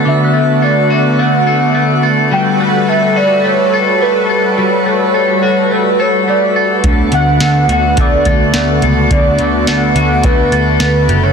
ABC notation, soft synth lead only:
X:1
M:4/4
L:1/16
Q:1/4=106
K:D
V:1 name="Soft synth lead"
e4 d4 f4 z4 | g3/2 g/2 f2 e2 d2 c4 B3 z | c8 B2 c2 d3 z | z2 f4 f2 d6 z2 |
d4 f4 B4 B3 c |]